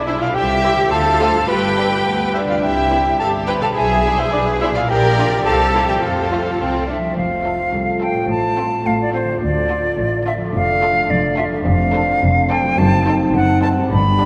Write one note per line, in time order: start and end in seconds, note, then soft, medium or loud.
0.00 0.26 B1 medium
0.00 0.28 B2 soft
0.00 0.33 E4 medium
0.00 0.33 B4 soft
0.00 0.35 D5 soft
0.07 0.15 D4 medium
0.07 0.21 E4 medium
0.07 0.15 E4 medium
0.07 0.13 C5 medium
0.07 0.24 E5 medium
0.17 0.85 C3 medium
0.21 0.35 F4 medium
0.21 0.27 D5 medium
0.21 0.37 F5 medium
0.26 0.81 A4 soft
0.30 0.85 C5 soft
0.35 0.82 C2 medium
0.35 0.90 G4 medium
0.35 0.91 E5 medium
0.35 0.91 G5 medium
0.64 0.72 C4 medium
0.64 0.72 E4 medium
0.73 1.41 D3 medium
0.78 1.44 F4 medium
0.82 1.46 A4 soft
0.87 1.46 A4 medium
0.87 1.48 C5 medium
0.91 1.39 D2 medium
0.91 1.48 F4 medium
0.91 1.47 F5 medium
0.91 1.47 A5 medium
1.20 1.28 C4 medium
1.20 1.28 F4 medium
1.30 2.56 G2 soft
1.35 2.58 D4 soft
1.39 2.52 G4 soft
1.44 2.63 D5 soft
1.48 1.96 G1 medium
1.48 2.34 G4 medium
1.48 2.32 B4 medium
1.48 2.34 G5 medium
1.77 1.86 D4 soft
1.77 1.85 G4 soft
2.06 2.53 D2 medium
2.06 2.32 B3 medium
2.34 2.62 D4 medium
2.34 2.40 E4 soft
2.34 2.40 C5 soft
2.34 2.40 E5 medium
2.44 3.69 C3 soft
2.44 2.62 D5 medium
2.49 3.71 C4 soft
2.49 2.63 F4 medium
2.49 2.56 F5 medium
2.53 3.74 G4 soft
2.58 3.70 E5 soft
2.62 3.10 C2 medium
2.62 3.15 E4 medium
2.62 3.18 G4 medium
2.62 3.18 E5 medium
2.62 3.18 G5 medium
2.91 2.99 C4 soft
2.91 2.99 E4 soft
3.20 3.67 G1 medium
3.20 3.75 G4 medium
3.20 3.28 A4 medium
3.20 3.28 F5 medium
3.20 3.32 A5 medium
3.48 3.56 C4 medium
3.48 3.56 E4 soft
3.48 3.61 B4 medium
3.48 3.53 B4 medium
3.48 3.53 G5 medium
3.58 4.82 B2 medium
3.58 3.67 A4 medium
3.62 4.74 D4 soft
3.62 3.68 F5 medium
3.62 3.70 A5 medium
3.67 4.86 E4 soft
3.71 4.88 E5 soft
3.76 4.23 B1 medium
3.76 4.86 G#4 medium
3.76 4.17 G#4 medium
3.76 4.17 E5 medium
3.76 4.22 G#5 medium
4.05 4.13 D4 medium
4.05 4.13 E4 medium
4.18 4.24 E4 medium
4.18 4.32 C5 medium
4.18 4.32 E5 medium
4.32 4.79 B1 medium
4.32 4.41 D4 medium
4.32 4.60 B4 medium
4.32 4.45 D5 medium
4.60 4.69 D4 medium
4.60 4.66 E4 medium
4.60 4.69 E4 medium
4.60 4.67 C5 medium
4.60 4.68 E5 medium
4.71 5.38 A#2 medium
4.75 5.41 D4 medium
4.75 4.80 F4 medium
4.75 4.80 D5 medium
4.75 4.89 F5 medium
4.80 5.43 F4 medium
4.85 5.44 A#4 medium
4.85 5.45 D5 medium
4.89 5.36 A#1 medium
4.89 5.44 G4 medium
4.89 5.44 D5 medium
4.89 5.25 G5 medium
5.18 5.26 D4 medium
5.18 5.26 F4 medium
5.27 5.95 C3 medium
5.32 5.97 A#3 medium
5.36 6.00 E4 soft
5.41 5.96 C5 medium
5.45 5.92 C2 medium
5.45 6.01 G4 medium
5.45 5.87 A4 medium
5.45 5.87 F5 medium
5.45 5.91 A5 medium
5.74 5.82 A#3 medium
5.74 5.82 E4 medium
5.84 6.97 F3 soft
5.84 5.93 E5 medium
5.88 7.02 A3 soft
5.88 6.02 G4 medium
5.88 6.02 G5 medium
5.93 7.06 F4 soft
5.97 7.11 C5 soft
6.02 6.49 F2 medium
6.02 6.86 F4 medium
6.02 6.87 A4 medium
6.02 6.86 C5 medium
6.02 6.86 F5 medium
6.31 6.39 A3 soft
6.31 6.39 F4 soft
6.59 7.06 C2 medium
6.59 6.85 C4 medium
6.87 6.95 D4 medium
6.87 7.14 E5 medium
6.98 10.88 F3 soft
7.03 8.15 A3 soft
7.07 8.19 F4 soft
7.12 7.61 F2 medium
7.12 8.24 C5 soft
7.16 7.61 F1 medium
7.16 9.38 A3 medium
7.16 9.38 F4 medium
7.16 8.00 F5 medium
7.44 7.65 C4 medium
7.44 7.66 A4 medium
7.72 8.17 C2 medium
7.72 8.18 C2 medium
8.00 8.22 C4 medium
8.00 8.22 A4 medium
8.00 8.29 G5 medium
8.12 9.35 A2 soft
8.16 9.27 A3 soft
8.20 9.32 F4 soft
8.25 8.74 A2 medium
8.25 9.42 C5 soft
8.29 8.74 A1 medium
8.29 8.88 A5 medium
8.58 8.79 C4 medium
8.58 8.79 F4 medium
8.58 8.79 A4 medium
8.86 9.30 A1 medium
8.86 9.30 A2 medium
8.86 9.00 F5 medium
9.02 9.13 D5 medium
9.14 9.35 C4 medium
9.14 9.35 F4 medium
9.14 9.35 A4 medium
9.14 9.41 C5 medium
9.24 10.48 D3 medium
9.28 10.40 A3 soft
9.33 12.76 F4 soft
9.37 9.86 D2 medium
9.37 10.49 D5 soft
9.42 9.86 D2 medium
9.42 11.62 A3 medium
9.42 10.52 F4 medium
9.42 10.25 D5 medium
9.69 9.91 D4 medium
9.69 9.91 F4 medium
9.69 9.90 A4 medium
9.98 10.43 A1 medium
9.98 10.43 A2 medium
10.25 10.47 D4 medium
10.25 10.47 F4 medium
10.25 10.47 A4 medium
10.25 10.33 E5 medium
10.37 11.47 F2 medium
10.41 11.52 A3 soft
10.46 11.56 D4 soft
10.50 10.99 F1 medium
10.50 10.98 F2 medium
10.50 12.79 D5 soft
10.55 12.79 D4 medium
10.55 11.12 F5 medium
10.82 11.03 D4 medium
10.82 11.03 F4 medium
10.82 11.03 A4 medium
11.10 11.55 F1 medium
11.10 11.54 F2 medium
11.10 11.37 D5 medium
11.37 11.59 D4 medium
11.37 11.59 F4 medium
11.37 11.59 A4 medium
11.37 11.44 E5 medium
11.49 12.72 F2 medium
11.53 12.64 A3 soft
11.58 12.76 D4 medium
11.62 12.10 F2 medium
11.62 13.87 C4 medium
11.62 12.73 C5 medium
11.62 12.52 F5 medium
11.67 12.11 F1 loud
11.94 12.15 D4 medium
11.94 12.15 A4 medium
11.94 12.15 C5 medium
12.22 12.67 F1 medium
12.22 12.67 F2 medium
12.50 12.71 D4 medium
12.50 12.71 A4 medium
12.50 12.71 C5 medium
12.50 12.80 G5 medium
12.61 13.85 F#2 medium
12.66 13.87 A3 medium
12.70 13.89 D#4 medium
12.74 13.89 D#4 medium
12.74 13.91 C5 medium
12.74 13.15 A5 loud
12.78 13.23 F#1 loud
12.78 13.23 F#2 loud
13.07 13.27 D#4 medium
13.07 13.27 A4 medium
13.07 13.28 C5 medium
13.34 13.79 F#1 medium
13.34 13.79 F#2 medium
13.34 13.61 F#5 loud
13.62 13.84 D#4 medium
13.62 13.84 A4 medium
13.62 13.84 C5 medium
13.62 13.69 A5 medium
13.73 14.25 G2 medium
13.78 14.25 G3 medium
13.82 14.25 D4 medium
13.87 14.25 G2 medium
13.87 14.25 D4 medium
13.87 14.25 D5 medium
13.91 14.25 G1 loud
13.91 14.25 G3 medium
13.91 14.25 B5 loud
14.20 14.25 D4 medium
14.20 14.25 G4 medium
14.20 14.25 D5 medium